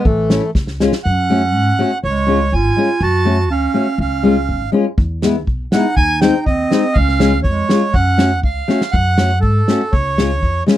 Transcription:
0.04 A1 E3 A3, kick
0.30 A3 C#4 E4, snare
0.55 C#2, kick, snare
0.67 snare
0.80 G#3 C#4 F4, snare
0.92 snare
1.04 F#2 C#4 F#5
1.30 A3 C#4 F#4
1.54 G#2
1.79 A3 C#4 F#4
2.03 C#2 G#3 C#5
2.27 G#3 C#4 F4
2.52 G#1 F4 G#5
2.76 G#3 C#4 F4
3.01 F#2 F#4 A5
3.25 A3 C#4 F#4
3.49 D2 C#4 F5
3.74 A3 C#4 F#4
3.98 C#2 C#4 F5
4.23 G#3 C#4 F4
4.49 G#1
4.72 G#3 C#4 F4
4.98 E2, kick
5.22 G#3 B3 E4, snare
5.47 B1, kick
5.72 G#3 B3 D#4 E4 F#5, snare
5.96 D#2 D#4 G#5, kick
6.21 G#3 C4 D#4 G5, snare
6.46 D#2 C4 D#5, kick
6.70 G#3 C4 D#4, snare
6.94 C#2 C#4 F5, kick
7.09 snare
7.19 G#3 C#4 F4, snare
7.43 F2 G#3 C#5, kick
7.69 G#3 C#4 F4, snare
7.94 F#2 C#4 F#5, kick
8.17 A3 C#4 F#4, snare
8.43 C#2 F5, kick
8.68 A3 C#4 F#4, snare
8.81 snare
8.92 F#2 F#5, kick
9.18 A3 C#4 F#4, snare
9.41 G#2 A4, kick
9.68 A3 C#4 F#4, snare
9.92 C#2 C#5, kick
10.18 G#3 C#4 F4, snare
10.43 F2, kick
10.66 G#3 C#4 F4, snare

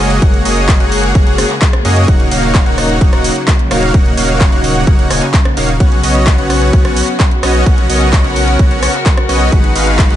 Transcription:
Already playing: C#3 G#3 A#3 F#4
0.00 F#1 A#3 F#4 G#4 C#5 D#5
0.10 closed hi-hat
0.22 F#1 A#3 F#4 G#4 C#5 F#5, kick, closed hi-hat
0.34 closed hi-hat
0.45 F#1 A#3 F#4 G#4 C#5 D#5, open hi-hat
0.57 closed hi-hat
0.69 kick, clap, closed hi-hat
0.80 F#1 A#3 F#4 G#4 C#5 F#5, closed hi-hat
0.92 open hi-hat
1.04 closed hi-hat
1.15 F#1 A#3 F#4 G#4 C#5 F#5, kick, closed hi-hat
1.27 F#1 A#3 F#4 G#4 C#5 F#5, closed hi-hat
1.38 cross-stick, open hi-hat
1.50 clap, closed hi-hat
1.62 kick, clap, closed hi-hat
1.73 cross-stick, closed hi-hat
1.85 F#2 A#3 F#4 G#4 C#5 D#5, open hi-hat
1.96 closed hi-hat
2.08 D#1 F#3 A#3 D#4 F#4 C#5 F#5, kick, closed hi-hat
2.20 closed hi-hat
2.31 D#1 A#3 D#4 F#4 C#5 F5, open hi-hat
2.43 closed hi-hat
2.55 kick, clap, closed hi-hat
2.66 D#1 A#3 D#4 F#4 C#5 F#5, closed hi-hat
2.78 cross-stick, open hi-hat
2.90 closed hi-hat
3.01 D#1 A#3 D#4 F#4 C#5 F#5, kick, closed hi-hat
3.13 D#1 A#3 D#4 F#4 C#5 F#5, cross-stick, closed hi-hat
3.24 open hi-hat
3.36 closed hi-hat
3.48 kick, clap, closed hi-hat
3.59 closed hi-hat
3.71 D#1 A#3 D#4 F#4 C#5 F5, cross-stick, open hi-hat
3.83 closed hi-hat
3.94 D#1 A#3 D#4 F#4 C#5 F#5, kick, closed hi-hat
4.06 closed hi-hat
4.17 D#1 A#3 D#4 F#4 C#5 F5, open hi-hat
4.29 closed hi-hat
4.41 kick, clap, closed hi-hat
4.52 D#1 A#3 D#4 F#4 C#5 F#5, closed hi-hat
4.64 open hi-hat
4.76 closed hi-hat
4.87 D#1 A#3 D#4 F#4 C#5 F#5, kick, closed hi-hat
4.99 D#1 A#3 D#4 F#4 C#5 F#5, closed hi-hat
5.11 D#1 A#3 D#4 F#4 C#5 G#5, cross-stick, open hi-hat
5.22 clap, closed hi-hat
5.34 kick, clap, closed hi-hat
5.45 cross-stick, closed hi-hat
5.57 D#1 A#3 D#4 F#4 C#5 F5, open hi-hat
5.69 closed hi-hat
5.80 B1 F#3 B3 C#4 F#4 C#5 F#5, kick, closed hi-hat
5.92 closed hi-hat
6.03 B1 B3 C#4 F#4 C#5 D#5, open hi-hat
6.15 closed hi-hat
6.27 kick, clap, closed hi-hat
6.38 B1 B3 C#4 F#4 C#5 F#5, closed hi-hat
6.50 cross-stick, open hi-hat
6.62 closed hi-hat
6.73 B1 B3 C#4 F#4 C#5 F#5, kick, closed hi-hat
6.85 B1 B3 C#4 F#4 C#5 F#5, cross-stick, closed hi-hat
6.97 open hi-hat
7.08 closed hi-hat
7.20 kick, clap, closed hi-hat
7.31 closed hi-hat
7.43 B1 B3 C#4 F#4 C#5 D#5, cross-stick, open hi-hat
7.55 closed hi-hat
7.66 B1 B3 C#4 F#4 A#4 C#5 F#5, kick, closed hi-hat
7.78 closed hi-hat
7.90 B1 B3 C#4 F#4 C#5 D#5, open hi-hat
8.01 closed hi-hat
8.13 kick, clap, closed hi-hat
8.24 B1 B3 C#4 F#4 C#5 F#5, closed hi-hat
8.36 open hi-hat
8.48 closed hi-hat
8.59 B1 B3 C#4 F#4 C#5 F#5, kick, closed hi-hat
8.71 B1 B3 C#4 F#4 C#5 F#5, closed hi-hat
8.83 cross-stick, open hi-hat
8.94 clap, closed hi-hat
9.06 kick, clap, closed hi-hat
9.17 cross-stick, closed hi-hat
9.29 B1 B3 C#4 F#4 C#5 D#5, open hi-hat
9.41 closed hi-hat
9.52 G#1 D#3 G#3 B3 D#4 F#4 B4 F#5, kick, closed hi-hat
9.64 closed hi-hat
9.76 G#1 G#3 D#4 F#4 B4 F5, open hi-hat
9.87 closed hi-hat
9.99 kick, clap, closed hi-hat
10.10 G#1 G#3 D#4 F#4 B4 F#5, closed hi-hat

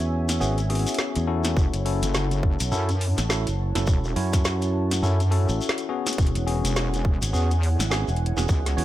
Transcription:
Already playing: E2 B3 C#4 E4 F#4 C#5 E5 G#5
0.00 closed hi-hat, shekere
0.29 snare, closed hi-hat, shekere
0.40 G#1 B3 C#4 F#4 G#4, shekere
0.58 closed hi-hat, shekere
0.70 B3 C#4 F#4 G#4, open hi-hat
0.75 open hi-hat
0.79 open hi-hat
0.87 closed hi-hat, open hi-hat, shekere
0.89 closed hi-hat, open hi-hat
0.94 closed hi-hat, open hi-hat, shekere
0.99 snare
1.16 E2, closed hi-hat, shekere
1.27 C#4 E4 F#4 A4
1.44 snare, closed hi-hat, shekere
1.56 F#1 E4 F#5 A5, kick, shekere
1.74 F#1, closed hi-hat, shekere
1.85 C#4 E4 F#4 A4, open hi-hat
2.02 F#1, closed hi-hat, shekere
2.14 snare, shekere
2.31 closed hi-hat, shekere
2.43 kick
2.60 B1, closed hi-hat, shekere
2.72 F#2 C#4 E4 F#4 A4, shekere
2.89 closed hi-hat, shekere
3.01 open hi-hat
3.18 A1, snare, closed hi-hat, shekere
3.29 C#4 E4 F#4 A4, snare, shekere
3.47 F#1, closed hi-hat, shekere
3.75 F#1 C#4 E4 F#4 A4, snare, closed hi-hat, shekere
3.87 E1, kick, shekere
4.04 shekere
4.16 F#2 C#4 E4 F#4 C#5, open hi-hat
4.33 kick, snare, closed hi-hat, shekere
4.45 snare, shekere
4.62 closed hi-hat, shekere
4.91 snare, closed hi-hat, shekere
5.02 F#2 C#4 E4 F#4 A4, shekere
5.20 closed hi-hat, shekere
5.31 C#4 E4 F#4 A4, open hi-hat
5.49 A1, shekere
5.61 shekere
5.69 snare
5.78 closed hi-hat, shekere
5.89 B3 C#4 F#4 G#4
6.07 snare, closed hi-hat, shekere
6.13 closed hi-hat
6.18 E1 G#5, kick, closed hi-hat, shekere
6.27 closed hi-hat
6.35 E1, closed hi-hat, shekere
6.46 B3 C#4 F#4 G#4, open hi-hat
6.64 E1, closed hi-hat, shekere
6.76 snare, shekere
6.94 closed hi-hat, shekere
7.05 kick
7.22 G#1, closed hi-hat, shekere
7.33 E2 B3 C#4 F#4 G#4, shekere
7.51 closed hi-hat, shekere
7.63 open hi-hat
7.79 G#1, snare, closed hi-hat, shekere
7.90 B3 C#4 F#4 G#4, snare, shekere
8.08 E1, closed hi-hat, shekere
8.16 closed hi-hat
8.26 closed hi-hat
8.37 E1 B3 C#4 F#4 G#4, snare, shekere
8.48 C#2, kick, shekere
8.66 snare, closed hi-hat, shekere
8.77 E2 B3 C#4 F#4 C#5, open hi-hat

